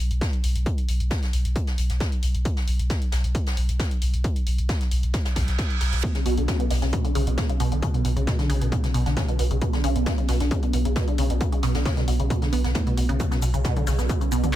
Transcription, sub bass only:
0.00 0.10 B1 loud
0.11 0.21 B1 medium
0.44 0.55 B1 loud
0.55 0.66 B1 medium
0.88 1.00 B1 loud
1.00 1.11 B1 medium
1.33 1.44 B1 loud
1.45 1.55 B1 medium
1.78 1.89 B1 loud
1.90 2.00 B1 medium
2.23 2.34 B1 loud
2.35 2.45 B1 medium
2.68 2.79 B1 loud
2.79 2.90 B1 medium
3.12 3.23 B1 medium
3.24 3.35 B1 medium
3.57 3.68 B1 loud
3.69 3.79 B1 medium
4.02 4.13 B1 loud
4.14 4.24 B1 medium
4.47 4.58 B1 loud
4.58 4.69 B1 medium
4.91 5.03 B1 loud
5.03 5.14 B1 medium
5.36 5.47 B1 loud
5.48 5.58 B1 medium
5.81 5.92 B1 loud
5.93 6.03 B1 medium
6.26 6.37 B1 loud
6.38 6.48 B1 medium
6.71 6.82 B1 loud
6.82 6.93 B1 medium
7.15 7.26 B1 loud
7.27 7.38 B1 medium
7.60 7.71 B1 loud
7.72 7.82 B1 medium
8.05 8.16 B1 loud
8.17 8.27 B1 medium
8.50 8.61 B1 loud
8.61 8.72 B1 medium
8.94 9.06 B1 loud
9.06 9.17 B1 medium
9.39 9.50 B1 loud
9.51 9.61 B1 medium
9.84 9.95 B1 loud
9.96 10.06 B1 medium
10.29 10.40 B1 loud
10.40 10.51 B1 medium
10.73 10.85 B1 loud
10.85 10.96 B1 medium
11.18 11.29 B1 loud
11.30 11.41 B1 medium
11.63 11.74 B1 loud
11.75 11.85 B1 medium
12.08 12.19 B1 loud
12.20 12.30 B1 medium
12.53 12.64 B1 loud
12.64 12.75 B1 medium
12.97 13.09 B1 medium
13.09 13.20 B1 medium
13.42 13.53 B1 loud
13.54 13.64 B1 medium
13.87 13.98 B1 loud
13.99 14.09 B1 medium
14.32 14.43 B1 loud
14.44 14.54 B1 medium

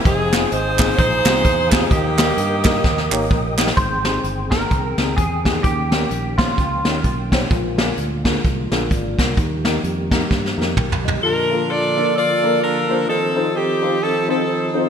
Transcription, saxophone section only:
0.05 0.95 C4 medium
0.05 0.51 D#4 medium
0.05 0.49 G#4 loud
0.52 0.96 D#4 medium
0.52 0.97 G#4 medium
0.52 0.96 C5 loud
0.97 1.87 D#4 medium
0.97 1.70 G#4 medium
0.97 1.68 C5 loud
1.71 1.91 G#4 medium
1.89 3.26 A#3 medium
1.89 3.26 D#4 medium
1.89 3.30 G4 medium
11.23 12.12 D4 medium
11.23 11.69 F4 medium
11.23 11.67 A#4 loud
11.70 12.15 F4 medium
11.70 12.15 A4 medium
11.70 12.15 D5 loud
12.16 12.60 F4 medium
12.16 13.05 A4 medium
12.16 12.59 D5 loud
12.61 13.05 D4 medium
12.61 13.05 F4 medium
12.61 13.05 A#4 medium
13.08 13.53 C4 medium
13.08 13.54 D#4 medium
13.08 13.52 A4 medium
13.55 14.00 C4 medium
13.55 14.00 D#4 medium
13.55 14.01 G4 medium
14.02 14.28 C4 medium
14.02 14.28 D#4 medium
14.02 14.28 A4 medium
14.29 14.89 C4 medium
14.29 14.89 D#4 medium
14.29 14.72 A4 medium

